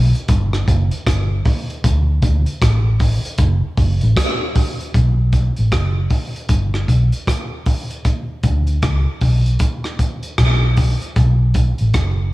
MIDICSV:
0, 0, Header, 1, 3, 480
1, 0, Start_track
1, 0, Key_signature, 2, "minor"
1, 0, Tempo, 777202
1, 1135, Time_signature, 4, 2, 24, 8
1, 7621, End_track
2, 0, Start_track
2, 0, Title_t, "Fingered electric bass"
2, 0, Program_c, 0, 33
2, 0, Note_on_c, 0, 35, 87
2, 68, Note_off_c, 0, 35, 0
2, 182, Note_on_c, 0, 31, 103
2, 387, Note_off_c, 0, 31, 0
2, 424, Note_on_c, 0, 30, 98
2, 547, Note_off_c, 0, 30, 0
2, 663, Note_on_c, 0, 31, 91
2, 867, Note_off_c, 0, 31, 0
2, 1143, Note_on_c, 0, 38, 107
2, 1346, Note_off_c, 0, 38, 0
2, 1379, Note_on_c, 0, 38, 93
2, 1504, Note_off_c, 0, 38, 0
2, 1621, Note_on_c, 0, 33, 92
2, 1952, Note_off_c, 0, 33, 0
2, 2096, Note_on_c, 0, 30, 105
2, 2222, Note_off_c, 0, 30, 0
2, 2337, Note_on_c, 0, 30, 87
2, 2462, Note_off_c, 0, 30, 0
2, 2491, Note_on_c, 0, 33, 98
2, 2567, Note_off_c, 0, 33, 0
2, 3059, Note_on_c, 0, 35, 86
2, 3391, Note_off_c, 0, 35, 0
2, 3451, Note_on_c, 0, 33, 84
2, 3527, Note_off_c, 0, 33, 0
2, 3537, Note_on_c, 0, 30, 92
2, 3743, Note_off_c, 0, 30, 0
2, 4014, Note_on_c, 0, 31, 95
2, 4221, Note_off_c, 0, 31, 0
2, 4256, Note_on_c, 0, 35, 79
2, 4381, Note_off_c, 0, 35, 0
2, 5216, Note_on_c, 0, 38, 90
2, 5423, Note_off_c, 0, 38, 0
2, 5457, Note_on_c, 0, 37, 82
2, 5583, Note_off_c, 0, 37, 0
2, 5695, Note_on_c, 0, 35, 73
2, 5902, Note_off_c, 0, 35, 0
2, 6418, Note_on_c, 0, 35, 88
2, 6751, Note_off_c, 0, 35, 0
2, 6900, Note_on_c, 0, 35, 101
2, 7233, Note_off_c, 0, 35, 0
2, 7293, Note_on_c, 0, 33, 80
2, 7369, Note_off_c, 0, 33, 0
2, 7381, Note_on_c, 0, 30, 85
2, 7587, Note_off_c, 0, 30, 0
2, 7621, End_track
3, 0, Start_track
3, 0, Title_t, "Drums"
3, 93, Note_on_c, 9, 42, 55
3, 155, Note_off_c, 9, 42, 0
3, 175, Note_on_c, 9, 42, 101
3, 177, Note_on_c, 9, 36, 126
3, 236, Note_off_c, 9, 42, 0
3, 239, Note_off_c, 9, 36, 0
3, 329, Note_on_c, 9, 37, 62
3, 391, Note_off_c, 9, 37, 0
3, 418, Note_on_c, 9, 36, 80
3, 421, Note_on_c, 9, 42, 76
3, 480, Note_off_c, 9, 36, 0
3, 483, Note_off_c, 9, 42, 0
3, 564, Note_on_c, 9, 42, 55
3, 626, Note_off_c, 9, 42, 0
3, 658, Note_on_c, 9, 36, 105
3, 660, Note_on_c, 9, 37, 116
3, 666, Note_on_c, 9, 42, 99
3, 720, Note_off_c, 9, 36, 0
3, 722, Note_off_c, 9, 37, 0
3, 728, Note_off_c, 9, 42, 0
3, 895, Note_on_c, 9, 46, 72
3, 899, Note_on_c, 9, 36, 104
3, 957, Note_off_c, 9, 46, 0
3, 961, Note_off_c, 9, 36, 0
3, 1050, Note_on_c, 9, 42, 54
3, 1112, Note_off_c, 9, 42, 0
3, 1137, Note_on_c, 9, 36, 109
3, 1137, Note_on_c, 9, 42, 90
3, 1199, Note_off_c, 9, 36, 0
3, 1199, Note_off_c, 9, 42, 0
3, 1372, Note_on_c, 9, 42, 74
3, 1374, Note_on_c, 9, 36, 91
3, 1434, Note_off_c, 9, 42, 0
3, 1436, Note_off_c, 9, 36, 0
3, 1520, Note_on_c, 9, 42, 50
3, 1582, Note_off_c, 9, 42, 0
3, 1616, Note_on_c, 9, 36, 115
3, 1616, Note_on_c, 9, 42, 85
3, 1620, Note_on_c, 9, 37, 110
3, 1678, Note_off_c, 9, 36, 0
3, 1678, Note_off_c, 9, 42, 0
3, 1682, Note_off_c, 9, 37, 0
3, 1850, Note_on_c, 9, 46, 88
3, 1854, Note_on_c, 9, 36, 94
3, 1912, Note_off_c, 9, 46, 0
3, 1916, Note_off_c, 9, 36, 0
3, 2008, Note_on_c, 9, 42, 63
3, 2070, Note_off_c, 9, 42, 0
3, 2086, Note_on_c, 9, 42, 97
3, 2091, Note_on_c, 9, 36, 116
3, 2148, Note_off_c, 9, 42, 0
3, 2153, Note_off_c, 9, 36, 0
3, 2330, Note_on_c, 9, 46, 50
3, 2331, Note_on_c, 9, 36, 79
3, 2391, Note_off_c, 9, 46, 0
3, 2393, Note_off_c, 9, 36, 0
3, 2477, Note_on_c, 9, 42, 56
3, 2539, Note_off_c, 9, 42, 0
3, 2573, Note_on_c, 9, 36, 106
3, 2576, Note_on_c, 9, 37, 115
3, 2582, Note_on_c, 9, 42, 100
3, 2634, Note_off_c, 9, 36, 0
3, 2638, Note_off_c, 9, 37, 0
3, 2644, Note_off_c, 9, 42, 0
3, 2811, Note_on_c, 9, 46, 68
3, 2814, Note_on_c, 9, 36, 100
3, 2873, Note_off_c, 9, 46, 0
3, 2876, Note_off_c, 9, 36, 0
3, 2967, Note_on_c, 9, 42, 51
3, 3028, Note_off_c, 9, 42, 0
3, 3053, Note_on_c, 9, 36, 104
3, 3054, Note_on_c, 9, 42, 83
3, 3115, Note_off_c, 9, 36, 0
3, 3115, Note_off_c, 9, 42, 0
3, 3289, Note_on_c, 9, 42, 69
3, 3291, Note_on_c, 9, 36, 82
3, 3351, Note_off_c, 9, 42, 0
3, 3352, Note_off_c, 9, 36, 0
3, 3436, Note_on_c, 9, 42, 47
3, 3498, Note_off_c, 9, 42, 0
3, 3531, Note_on_c, 9, 42, 74
3, 3532, Note_on_c, 9, 36, 105
3, 3535, Note_on_c, 9, 37, 103
3, 3593, Note_off_c, 9, 42, 0
3, 3594, Note_off_c, 9, 36, 0
3, 3597, Note_off_c, 9, 37, 0
3, 3767, Note_on_c, 9, 46, 75
3, 3771, Note_on_c, 9, 36, 83
3, 3828, Note_off_c, 9, 46, 0
3, 3833, Note_off_c, 9, 36, 0
3, 3928, Note_on_c, 9, 42, 52
3, 3989, Note_off_c, 9, 42, 0
3, 4006, Note_on_c, 9, 42, 100
3, 4009, Note_on_c, 9, 36, 110
3, 4068, Note_off_c, 9, 42, 0
3, 4071, Note_off_c, 9, 36, 0
3, 4162, Note_on_c, 9, 37, 57
3, 4224, Note_off_c, 9, 37, 0
3, 4251, Note_on_c, 9, 36, 69
3, 4253, Note_on_c, 9, 42, 71
3, 4313, Note_off_c, 9, 36, 0
3, 4315, Note_off_c, 9, 42, 0
3, 4399, Note_on_c, 9, 42, 51
3, 4461, Note_off_c, 9, 42, 0
3, 4492, Note_on_c, 9, 36, 97
3, 4496, Note_on_c, 9, 37, 102
3, 4502, Note_on_c, 9, 42, 94
3, 4554, Note_off_c, 9, 36, 0
3, 4558, Note_off_c, 9, 37, 0
3, 4564, Note_off_c, 9, 42, 0
3, 4729, Note_on_c, 9, 46, 68
3, 4733, Note_on_c, 9, 36, 92
3, 4791, Note_off_c, 9, 46, 0
3, 4795, Note_off_c, 9, 36, 0
3, 4882, Note_on_c, 9, 42, 49
3, 4943, Note_off_c, 9, 42, 0
3, 4970, Note_on_c, 9, 42, 80
3, 4972, Note_on_c, 9, 36, 99
3, 5032, Note_off_c, 9, 42, 0
3, 5034, Note_off_c, 9, 36, 0
3, 5207, Note_on_c, 9, 42, 68
3, 5210, Note_on_c, 9, 36, 79
3, 5269, Note_off_c, 9, 42, 0
3, 5272, Note_off_c, 9, 36, 0
3, 5353, Note_on_c, 9, 42, 47
3, 5415, Note_off_c, 9, 42, 0
3, 5448, Note_on_c, 9, 42, 74
3, 5451, Note_on_c, 9, 36, 97
3, 5452, Note_on_c, 9, 37, 110
3, 5510, Note_off_c, 9, 42, 0
3, 5513, Note_off_c, 9, 36, 0
3, 5514, Note_off_c, 9, 37, 0
3, 5687, Note_on_c, 9, 46, 73
3, 5691, Note_on_c, 9, 36, 90
3, 5749, Note_off_c, 9, 46, 0
3, 5753, Note_off_c, 9, 36, 0
3, 5842, Note_on_c, 9, 42, 57
3, 5904, Note_off_c, 9, 42, 0
3, 5924, Note_on_c, 9, 42, 92
3, 5929, Note_on_c, 9, 36, 113
3, 5985, Note_off_c, 9, 42, 0
3, 5991, Note_off_c, 9, 36, 0
3, 6079, Note_on_c, 9, 37, 61
3, 6141, Note_off_c, 9, 37, 0
3, 6170, Note_on_c, 9, 42, 69
3, 6171, Note_on_c, 9, 36, 71
3, 6231, Note_off_c, 9, 42, 0
3, 6233, Note_off_c, 9, 36, 0
3, 6316, Note_on_c, 9, 42, 54
3, 6378, Note_off_c, 9, 42, 0
3, 6411, Note_on_c, 9, 37, 111
3, 6412, Note_on_c, 9, 36, 96
3, 6417, Note_on_c, 9, 42, 89
3, 6473, Note_off_c, 9, 37, 0
3, 6474, Note_off_c, 9, 36, 0
3, 6479, Note_off_c, 9, 42, 0
3, 6649, Note_on_c, 9, 46, 68
3, 6655, Note_on_c, 9, 36, 91
3, 6710, Note_off_c, 9, 46, 0
3, 6716, Note_off_c, 9, 36, 0
3, 6803, Note_on_c, 9, 42, 47
3, 6865, Note_off_c, 9, 42, 0
3, 6892, Note_on_c, 9, 42, 83
3, 6894, Note_on_c, 9, 36, 96
3, 6954, Note_off_c, 9, 42, 0
3, 6956, Note_off_c, 9, 36, 0
3, 7128, Note_on_c, 9, 42, 71
3, 7133, Note_on_c, 9, 36, 83
3, 7189, Note_off_c, 9, 42, 0
3, 7195, Note_off_c, 9, 36, 0
3, 7276, Note_on_c, 9, 42, 47
3, 7338, Note_off_c, 9, 42, 0
3, 7371, Note_on_c, 9, 42, 73
3, 7375, Note_on_c, 9, 36, 100
3, 7375, Note_on_c, 9, 37, 98
3, 7433, Note_off_c, 9, 42, 0
3, 7437, Note_off_c, 9, 36, 0
3, 7437, Note_off_c, 9, 37, 0
3, 7621, End_track
0, 0, End_of_file